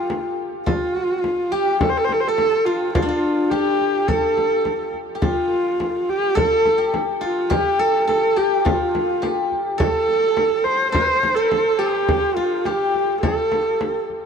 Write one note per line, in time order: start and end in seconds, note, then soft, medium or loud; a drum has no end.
0.00 0.39 F4 medium
0.00 0.66 F4 medium
0.00 1.51 G4 medium
0.00 0.58 A4 medium
0.00 0.29 C5 medium
0.10 frame drum medium
0.66 1.53 F4 medium
0.66 2.66 F4 medium
0.66 frame drum medium
0.95 frame drum soft
1.24 frame drum medium
1.52 3.51 G4 medium
1.52 1.80 G4 medium
1.52 frame drum soft
1.81 1.91 A4 medium
1.81 frame drum medium
1.90 1.99 C5 medium
1.97 2.06 A4 medium
2.05 2.14 C5 medium
2.09 2.22 A4 medium
2.09 frame drum soft
2.21 2.29 C5 medium
2.28 2.66 A4 loud
2.28 4.08 A4 medium
2.38 frame drum medium
2.65 2.92 F4 medium
2.65 2.94 F4 medium
2.93 3.52 F4 medium
2.93 3.08 F4 medium
2.93 frame drum medium
3.02 5.82 D4 medium
3.09 5.21 F4 medium
3.23 frame drum soft
3.51 4.09 G4 medium
3.51 5.15 G4 medium
3.51 frame drum medium
3.81 frame drum soft
4.08 4.93 A4 medium
4.08 6.27 A4 medium
4.08 frame drum medium
4.37 frame drum soft
4.65 frame drum medium
4.94 frame drum soft
5.15 6.78 G4 soft
5.22 7.20 F4 medium
5.22 6.11 F4 medium
5.22 frame drum medium
5.52 frame drum soft
5.80 frame drum medium
6.09 6.37 G4 medium
6.09 frame drum soft
6.35 7.79 A4 medium
6.35 6.93 A4 loud
6.35 frame drum medium
6.65 frame drum soft
6.78 7.49 G4 medium
6.94 frame drum medium
7.21 8.64 F4 medium
7.21 7.53 F4 medium
7.21 frame drum soft
7.50 8.36 G4 medium
7.50 7.81 G4 medium
7.50 frame drum medium
7.79 8.07 A4 medium
7.79 frame drum soft
8.07 8.39 A4 medium
8.07 9.77 A4 medium
8.07 frame drum medium
8.36 9.21 G4 medium
8.36 8.66 G4 medium
8.36 frame drum soft
8.65 9.51 F4 medium
8.65 11.17 F4 medium
8.65 frame drum medium
8.95 frame drum medium
9.22 11.57 G4 medium
9.22 frame drum medium
9.52 frame drum soft
9.78 11.36 A4 medium
9.78 10.66 A4 medium
9.78 frame drum medium
10.08 frame drum soft
10.37 frame drum medium
10.64 10.91 C5 loud
10.64 frame drum soft
10.92 11.36 C5 medium
10.92 12.90 C5 medium
10.92 frame drum medium
11.23 frame drum medium
11.35 11.80 A4 medium
11.35 13.22 A4 medium
11.52 frame drum medium
11.78 12.37 G4 medium
11.78 12.66 G4 medium
11.78 frame drum soft
12.08 frame drum medium
12.36 12.67 F4 medium
12.36 14.26 F4 medium
12.36 frame drum soft
12.65 13.21 G4 medium
12.65 14.26 G4 medium
12.65 frame drum medium
12.94 frame drum soft
13.21 14.04 A4 medium
13.21 14.26 A4 medium
13.21 frame drum medium
13.52 frame drum medium
13.81 frame drum medium
14.10 frame drum soft